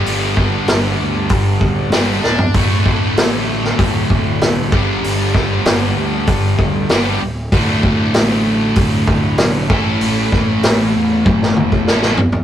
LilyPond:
<<
  \new Staff \with { instrumentName = "Distorted electric guitar" } { \time 4/4 \key d \major \tempo 4 = 96 <g, d g b d' g'>2. <g, d g b d' g'>8 r8 | <d, a, d a fis'>2.~ <d, a, d a fis'>8 <g, d g b d' g'>8~ | <g, d g b d' g'>2. <g, d g b d' g'>8 r8 | <d, a, d a fis'>2.~ <d, a, d a fis'>8 <a, e a cis' e' a'>8~ |
<a, e a cis' e' a'>2. <a, e a cis' e' a'>8 r8 | }
  \new Staff \with { instrumentName = "Fingered electric bass" } { \clef bass \time 4/4 \key d \major g,,4 g,,8 d,8 g,,8 d,,8 g,,8 d,,8 | d,,8 d,,8 a,,4 d,,8 d,,8 c,8 g,,8 | g,,4 g,,8 d,8 g,,8 d,,8 g,,8 d,,8 | d,,8 d,,8 a,,4 d,,8 d,,8 b,,8 a,,8 |
a,,4 a,,8 e,8 a,,8 e,,8 a,,8 e,,8 | }
  \new DrumStaff \with { instrumentName = "Drums" } \drummode { \time 4/4 hho8 bd8 <hho sn>4 <hho bd>8 bd8 <hho sn>8 sn16 tomfh16 | <hho bd>8 bd8 <hho sn>8. sn16 <hho bd>8 bd8 <hho sn>8 bd8 | hho8 <bd sn>8 <hho sn>4 <hho bd>8 bd8 <hho sn>4 | <hho bd>8 bd8 <hho sn>4 <hho bd>8 bd8 <hho sn>8 bd8 |
hho8 <bd sn>8 <hho sn>4 <bd tommh>16 sn16 toml16 bd16 sn16 sn16 tomfh16 tomfh16 | }
>>